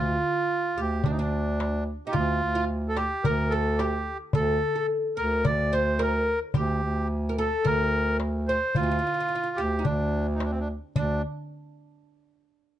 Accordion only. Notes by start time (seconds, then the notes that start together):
Already playing: F4
0.80 G4
1.04 D4
1.10 D#4
1.19 D4
2.07 G4
2.12 F4
2.89 A4
2.96 G4
3.24 A#4
3.50 A4
3.78 G4
4.35 A4
5.17 A#4
5.46 D5
5.73 C5
6.02 A#4
6.58 G4
7.39 A4
7.66 A#4
8.48 C5
8.75 F4
9.56 G4
9.83 D4
10.35 D#4
10.43 D4
10.50 C4
10.59 D4
10.97 D4